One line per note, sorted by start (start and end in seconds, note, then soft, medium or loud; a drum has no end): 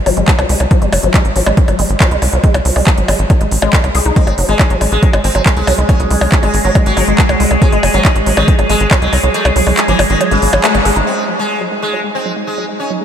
0.06 0.12 G#1 loud
0.06 0.14 F#3 medium
0.06 open hi-hat loud
0.06 percussion blips soft
0.17 0.23 G#1 medium
0.17 0.20 G#3 medium
0.17 closed hi-hat soft
0.28 kick loud
0.28 clap loud
0.28 closed hi-hat medium
0.39 0.45 C2 medium
0.39 0.47 F#3 medium
0.39 closed hi-hat soft
0.39 percussion blips medium
0.49 0.55 C2 loud
0.49 0.53 G#3 medium
0.49 open hi-hat loud
0.60 0.66 C2 medium
0.60 closed hi-hat soft
0.60 percussion blips soft
0.71 0.79 F#3 medium
0.71 kick loud
0.71 closed hi-hat medium
0.82 0.88 G#1 medium
0.82 0.85 G#3 medium
0.82 closed hi-hat soft
0.93 0.99 F#1 loud
0.93 open hi-hat loud
0.93 percussion blips medium
1.03 1.09 G#1 medium
1.03 1.11 F#3 medium
1.03 closed hi-hat soft
1.14 1.17 G#3 medium
1.14 kick loud
1.14 clap loud
1.14 closed hi-hat medium
1.14 percussion blips soft
1.25 1.31 A1 medium
1.25 closed hi-hat soft
1.36 1.42 A1 loud
1.36 1.44 F#3 medium
1.36 open hi-hat loud
1.46 1.53 A1 medium
1.46 1.50 G#3 medium
1.46 closed hi-hat soft
1.46 percussion blips medium
1.57 kick loud
1.57 closed hi-hat medium
1.68 1.74 G#1 medium
1.68 1.76 F#3 medium
1.68 closed hi-hat soft
1.68 percussion blips soft
1.79 1.85 G#1 loud
1.79 1.82 G#3 medium
1.79 open hi-hat loud
1.90 1.96 G#1 medium
1.90 closed hi-hat soft
2.00 2.08 F#3 medium
2.00 kick loud
2.00 clap loud
2.00 closed hi-hat medium
2.00 percussion blips medium
2.11 2.17 C2 medium
2.11 2.14 G#3 medium
2.11 closed hi-hat soft
2.22 2.28 C2 loud
2.22 open hi-hat loud
2.22 percussion blips soft
2.33 2.39 C2 medium
2.33 2.41 F#3 medium
2.33 closed hi-hat soft
2.44 2.47 G#3 medium
2.44 kick loud
2.44 closed hi-hat medium
2.54 2.60 C2 medium
2.54 closed hi-hat soft
2.54 percussion blips medium
2.65 2.71 C2 loud
2.65 2.73 F#3 medium
2.65 open hi-hat loud
2.76 2.82 C2 medium
2.76 2.79 G#3 medium
2.76 open hi-hat medium
2.76 percussion blips soft
2.87 kick loud
2.87 clap loud
2.87 closed hi-hat medium
2.98 3.04 G#1 medium
2.98 3.06 F#3 medium
2.98 closed hi-hat soft
3.08 3.14 G#1 medium
3.08 3.12 G#3 medium
3.08 open hi-hat loud
3.08 percussion blips medium
3.19 3.25 G#1 loud
3.19 closed hi-hat soft
3.30 3.38 F#3 medium
3.30 kick loud
3.30 closed hi-hat medium
3.30 percussion blips soft
3.41 3.47 A1 medium
3.41 3.44 G#3 medium
3.41 closed hi-hat soft
3.52 3.58 A1 loud
3.52 open hi-hat loud
3.62 3.68 A1 medium
3.62 3.68 G#3 loud
3.62 closed hi-hat soft
3.62 percussion blips medium
3.73 3.81 G#3 medium
3.73 kick loud
3.73 clap loud
3.73 closed hi-hat medium
3.84 3.90 C2 medium
3.84 closed hi-hat soft
3.84 percussion blips soft
3.95 4.01 C2 loud
3.95 4.03 G#4 medium
3.95 open hi-hat loud
4.05 4.12 C2 medium
4.05 4.13 D#4 medium
4.05 closed hi-hat soft
4.16 11.08 G#3 medium
4.16 4.20 G#3 medium
4.16 4.33 C4 loud
4.16 11.08 G#4 medium
4.16 kick loud
4.16 closed hi-hat medium
4.27 4.33 G#1 medium
4.27 closed hi-hat soft
4.27 percussion blips soft
4.38 4.44 F#1 medium
4.38 4.46 F#3 medium
4.38 open hi-hat loud
4.49 4.55 G#1 medium
4.49 4.71 G#3 loud
4.49 4.52 G#3 medium
4.49 closed hi-hat soft
4.59 kick loud
4.59 clap loud
4.59 closed hi-hat medium
4.59 percussion blips medium
4.70 4.76 A1 medium
4.70 4.78 F#3 medium
4.70 closed hi-hat soft
4.81 4.87 A1 loud
4.81 4.84 G#3 medium
4.81 open hi-hat loud
4.81 percussion blips soft
4.92 4.98 A1 medium
4.92 5.09 G#3 medium
4.92 closed hi-hat soft
5.03 5.11 F#3 medium
5.03 kick loud
5.03 closed hi-hat medium
5.13 5.19 G#1 medium
5.13 5.17 G#3 medium
5.13 closed hi-hat soft
5.13 percussion blips medium
5.24 5.30 G#1 loud
5.24 5.41 C4 medium
5.24 open hi-hat loud
5.35 5.41 G#1 medium
5.35 5.43 F#3 medium
5.35 closed hi-hat soft
5.35 percussion blips soft
5.46 5.49 G#3 medium
5.46 kick loud
5.46 clap loud
5.46 closed hi-hat medium
5.57 5.63 C2 medium
5.57 5.73 G#3 loud
5.57 closed hi-hat soft
5.67 5.73 C2 loud
5.67 5.75 F#3 medium
5.67 open hi-hat loud
5.67 percussion blips medium
5.78 5.84 C2 medium
5.78 5.81 G#3 medium
5.78 closed hi-hat soft
5.89 6.00 C#4 medium
5.89 kick loud
5.89 closed hi-hat medium
5.89 percussion blips soft
6.00 6.06 C2 medium
6.00 6.08 F#3 medium
6.00 closed hi-hat soft
6.11 6.17 C2 loud
6.11 6.14 G#3 medium
6.11 open hi-hat loud
6.21 6.27 C2 medium
6.21 open hi-hat medium
6.21 percussion blips medium
6.32 6.40 F#3 medium
6.32 kick loud
6.32 clap loud
6.32 closed hi-hat medium
6.43 6.49 G#1 medium
6.43 6.46 G#3 medium
6.43 6.54 G#3 medium
6.43 closed hi-hat soft
6.43 percussion blips soft
6.54 6.60 G#1 loud
6.54 open hi-hat loud
6.65 6.71 G#1 medium
6.65 6.72 F#3 medium
6.65 6.76 F#3 medium
6.65 closed hi-hat soft
6.75 6.79 G#3 medium
6.75 kick loud
6.75 closed hi-hat medium
6.75 percussion blips medium
6.86 6.92 G#1 medium
6.86 7.53 F#3 loud
6.86 closed hi-hat soft
6.97 7.03 G#1 loud
6.97 7.05 F#3 medium
6.97 open hi-hat loud
6.97 percussion blips soft
7.08 7.14 G#1 medium
7.08 7.11 G#3 medium
7.08 closed hi-hat soft
7.18 kick loud
7.18 clap loud
7.18 closed hi-hat medium
7.29 7.35 C2 medium
7.29 7.37 F#3 medium
7.29 closed hi-hat soft
7.29 percussion blips medium
7.40 7.46 C2 loud
7.40 7.43 G#3 medium
7.40 open hi-hat loud
7.51 7.57 C2 medium
7.51 closed hi-hat soft
7.51 percussion blips soft
7.62 7.70 F#3 medium
7.62 7.78 G#3 loud
7.62 kick loud
7.62 closed hi-hat medium
7.72 7.78 G#1 medium
7.72 7.76 G#3 medium
7.72 closed hi-hat soft
7.83 7.89 F#1 loud
7.83 open hi-hat loud
7.83 percussion blips medium
7.94 8.00 G#1 medium
7.94 8.02 F#3 medium
7.94 8.16 F#3 loud
7.94 closed hi-hat soft
8.05 8.08 G#3 medium
8.05 kick loud
8.05 clap loud
8.05 closed hi-hat medium
8.05 percussion blips soft
8.16 8.22 A1 medium
8.16 closed hi-hat soft
8.26 8.32 A1 loud
8.26 8.34 F#3 medium
8.26 open hi-hat loud
8.37 8.43 A1 medium
8.37 8.54 D#3 loud
8.37 8.40 G#3 medium
8.37 closed hi-hat soft
8.37 percussion blips medium
8.48 kick loud
8.48 closed hi-hat medium
8.59 8.65 G#1 medium
8.59 8.67 F#3 medium
8.59 closed hi-hat soft
8.59 percussion blips soft
8.70 8.76 G#1 loud
8.70 8.73 G#3 medium
8.70 8.86 G#3 medium
8.70 open hi-hat loud
8.80 8.86 G#1 medium
8.80 closed hi-hat soft
8.91 8.99 F#3 medium
8.91 kick loud
8.91 clap loud
8.91 closed hi-hat medium
8.91 percussion blips medium
9.02 9.08 C2 medium
9.02 9.19 F#3 loud
9.02 9.05 G#3 medium
9.02 closed hi-hat soft
9.13 9.19 C2 loud
9.13 open hi-hat loud
9.13 percussion blips soft
9.23 9.30 C2 loud
9.23 9.31 F#3 medium
9.23 closed hi-hat soft
9.34 9.37 G#3 medium
9.34 9.46 A3 medium
9.34 closed hi-hat medium
9.45 9.51 C2 medium
9.45 closed hi-hat soft
9.45 percussion blips medium
9.56 9.62 C2 loud
9.56 9.64 F#3 medium
9.56 open hi-hat loud
9.67 9.73 C2 medium
9.67 9.70 G#3 medium
9.67 open hi-hat medium
9.67 percussion blips soft
9.77 clap loud
9.77 closed hi-hat medium
9.88 9.94 G#1 medium
9.88 9.99 E3 medium
9.88 9.96 F#3 medium
9.88 closed hi-hat soft
9.99 10.05 G#1 loud
9.99 10.02 G#3 medium
9.99 open hi-hat loud
9.99 percussion blips medium
10.10 10.16 G#1 medium
10.10 10.21 D#3 medium
10.10 closed hi-hat soft
10.21 10.29 F#3 medium
10.21 closed hi-hat medium
10.21 percussion blips soft
10.31 10.37 G#1 medium
10.31 10.98 C#3 loud
10.31 10.35 G#3 medium
10.31 closed hi-hat soft
10.42 10.48 G#1 loud
10.42 open hi-hat loud
10.53 10.59 G#1 medium
10.53 10.61 F#3 medium
10.53 closed hi-hat soft
10.53 percussion blips medium
10.64 10.69 A3 loud
10.64 clap loud
10.64 closed hi-hat medium
10.75 10.81 G#1 medium
10.75 10.80 G#3 medium
10.75 closed hi-hat soft
10.75 percussion blips soft
10.85 10.91 G#1 loud
10.85 10.93 G#4 loud
10.85 open hi-hat loud
10.96 11.02 G#1 medium
10.96 10.99 D#4 loud
10.96 closed hi-hat soft
11.07 11.10 G#3 medium
11.07 11.24 C4 loud
11.07 13.05 D#4 medium
11.29 11.37 F#3 medium
11.39 11.43 G#3 medium
11.39 11.62 G#3 medium
11.61 11.69 F#3 medium
11.72 11.75 G#3 medium
11.82 11.99 G#3 medium
11.93 12.01 F#3 medium
12.04 12.07 G#3 medium
12.15 12.32 C4 medium
12.26 12.34 F#3 medium
12.36 12.40 G#3 medium
12.47 12.64 G#3 medium
12.58 12.66 F#3 medium
12.69 12.72 G#3 medium
12.80 12.91 C#4 medium
12.90 12.98 F#3 medium
13.01 13.04 G#3 medium